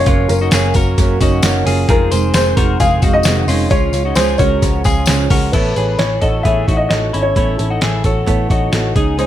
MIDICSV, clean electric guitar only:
0, 0, Header, 1, 2, 480
1, 0, Start_track
1, 0, Tempo, 455927
1, 67, Time_signature, 4, 2, 24, 8
1, 9754, End_track
2, 0, Start_track
2, 0, Title_t, "Clean electric guitar"
2, 0, Program_c, 0, 27
2, 73, Note_on_c, 0, 65, 92
2, 80, Note_on_c, 0, 61, 76
2, 408, Note_off_c, 0, 65, 0
2, 412, Note_off_c, 0, 61, 0
2, 434, Note_on_c, 0, 66, 61
2, 441, Note_on_c, 0, 63, 50
2, 550, Note_off_c, 0, 66, 0
2, 554, Note_off_c, 0, 63, 0
2, 556, Note_on_c, 0, 68, 68
2, 566, Note_on_c, 0, 61, 55
2, 791, Note_off_c, 0, 68, 0
2, 796, Note_off_c, 0, 61, 0
2, 797, Note_on_c, 0, 70, 89
2, 807, Note_on_c, 0, 66, 69
2, 1243, Note_off_c, 0, 70, 0
2, 1248, Note_off_c, 0, 66, 0
2, 1278, Note_on_c, 0, 66, 79
2, 1286, Note_on_c, 0, 63, 59
2, 1723, Note_off_c, 0, 66, 0
2, 1727, Note_off_c, 0, 63, 0
2, 1751, Note_on_c, 0, 68, 85
2, 1760, Note_on_c, 0, 65, 60
2, 1974, Note_off_c, 0, 68, 0
2, 1980, Note_off_c, 0, 65, 0
2, 1987, Note_on_c, 0, 68, 107
2, 1993, Note_on_c, 0, 65, 73
2, 2226, Note_off_c, 0, 68, 0
2, 2226, Note_on_c, 0, 72, 73
2, 2229, Note_off_c, 0, 65, 0
2, 2237, Note_on_c, 0, 68, 57
2, 2676, Note_off_c, 0, 72, 0
2, 2682, Note_off_c, 0, 68, 0
2, 2705, Note_on_c, 0, 70, 84
2, 2712, Note_on_c, 0, 66, 62
2, 2944, Note_off_c, 0, 70, 0
2, 2948, Note_off_c, 0, 66, 0
2, 2949, Note_on_c, 0, 68, 88
2, 2954, Note_on_c, 0, 65, 70
2, 3183, Note_off_c, 0, 65, 0
2, 3186, Note_off_c, 0, 68, 0
2, 3187, Note_on_c, 0, 66, 78
2, 3195, Note_on_c, 0, 63, 63
2, 3636, Note_off_c, 0, 66, 0
2, 3640, Note_off_c, 0, 63, 0
2, 3666, Note_on_c, 0, 65, 86
2, 3676, Note_on_c, 0, 61, 67
2, 3891, Note_off_c, 0, 65, 0
2, 3897, Note_off_c, 0, 61, 0
2, 3904, Note_on_c, 0, 65, 104
2, 3910, Note_on_c, 0, 61, 71
2, 4241, Note_off_c, 0, 65, 0
2, 4245, Note_off_c, 0, 61, 0
2, 4265, Note_on_c, 0, 66, 64
2, 4273, Note_on_c, 0, 63, 51
2, 4382, Note_on_c, 0, 68, 77
2, 4384, Note_off_c, 0, 66, 0
2, 4388, Note_off_c, 0, 63, 0
2, 4390, Note_on_c, 0, 65, 62
2, 4618, Note_off_c, 0, 68, 0
2, 4622, Note_on_c, 0, 70, 85
2, 4626, Note_off_c, 0, 65, 0
2, 4630, Note_on_c, 0, 66, 67
2, 5073, Note_off_c, 0, 70, 0
2, 5078, Note_off_c, 0, 66, 0
2, 5108, Note_on_c, 0, 68, 80
2, 5115, Note_on_c, 0, 65, 57
2, 5557, Note_off_c, 0, 68, 0
2, 5561, Note_off_c, 0, 65, 0
2, 5585, Note_on_c, 0, 70, 71
2, 5594, Note_on_c, 0, 66, 63
2, 5824, Note_off_c, 0, 70, 0
2, 5828, Note_off_c, 0, 66, 0
2, 5828, Note_on_c, 0, 69, 84
2, 5839, Note_on_c, 0, 64, 67
2, 6066, Note_off_c, 0, 69, 0
2, 6071, Note_off_c, 0, 64, 0
2, 6071, Note_on_c, 0, 71, 71
2, 6081, Note_on_c, 0, 68, 50
2, 6519, Note_off_c, 0, 71, 0
2, 6525, Note_off_c, 0, 68, 0
2, 6550, Note_on_c, 0, 69, 74
2, 6560, Note_on_c, 0, 66, 52
2, 6787, Note_off_c, 0, 66, 0
2, 6787, Note_off_c, 0, 69, 0
2, 6791, Note_on_c, 0, 68, 75
2, 6800, Note_on_c, 0, 64, 60
2, 7028, Note_off_c, 0, 68, 0
2, 7033, Note_off_c, 0, 64, 0
2, 7034, Note_on_c, 0, 66, 69
2, 7039, Note_on_c, 0, 63, 54
2, 7482, Note_off_c, 0, 66, 0
2, 7484, Note_off_c, 0, 63, 0
2, 7512, Note_on_c, 0, 64, 69
2, 7521, Note_on_c, 0, 61, 57
2, 7741, Note_off_c, 0, 64, 0
2, 7754, Note_off_c, 0, 61, 0
2, 7754, Note_on_c, 0, 64, 88
2, 7764, Note_on_c, 0, 61, 68
2, 8089, Note_off_c, 0, 64, 0
2, 8095, Note_off_c, 0, 61, 0
2, 8111, Note_on_c, 0, 66, 64
2, 8120, Note_on_c, 0, 63, 51
2, 8229, Note_off_c, 0, 66, 0
2, 8233, Note_off_c, 0, 63, 0
2, 8239, Note_on_c, 0, 68, 64
2, 8247, Note_on_c, 0, 64, 55
2, 8473, Note_off_c, 0, 68, 0
2, 8476, Note_off_c, 0, 64, 0
2, 8480, Note_on_c, 0, 69, 76
2, 8489, Note_on_c, 0, 66, 54
2, 8926, Note_off_c, 0, 69, 0
2, 8930, Note_off_c, 0, 66, 0
2, 8958, Note_on_c, 0, 66, 70
2, 8964, Note_on_c, 0, 63, 53
2, 9405, Note_off_c, 0, 66, 0
2, 9408, Note_off_c, 0, 63, 0
2, 9436, Note_on_c, 0, 68, 75
2, 9444, Note_on_c, 0, 63, 58
2, 9663, Note_off_c, 0, 68, 0
2, 9671, Note_off_c, 0, 63, 0
2, 9676, Note_on_c, 0, 68, 82
2, 9684, Note_on_c, 0, 63, 65
2, 9754, Note_off_c, 0, 63, 0
2, 9754, Note_off_c, 0, 68, 0
2, 9754, End_track
0, 0, End_of_file